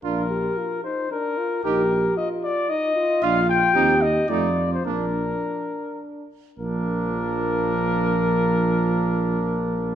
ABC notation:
X:1
M:3/4
L:1/16
Q:1/4=107
K:Bb
V:1 name="Cornet"
B6 c2 B4 | B4 e2 d2 e4 | f2 g4 e2 d3 c | B8 z4 |
B12- | B12 |]
V:2 name="French horn"
D2 G2 F2 E2 D2 F2 | G4 F4 E2 F2- | F4 G4 F4 | D8- D2 z2 |
B,12- | B,12 |]
V:3 name="Trumpet"
F2 z8 z2 | G2 z8 z2 | F2 z2 E2 z2 E2 z2 | D2 z8 z2 |
D12- | D12 |]
V:4 name="Trombone"
D2 z8 z2 | E2 z8 z2 | D2 z2 C2 z2 A,2 z2 | B,2 z8 z2 |
F,12- | F,12 |]
V:5 name="Tuba" clef=bass
B,,,4 z8 | B,,,4 z8 | B,,,4 E,,4 F,,4 | B,,,4 z8 |
B,,,12- | B,,,12 |]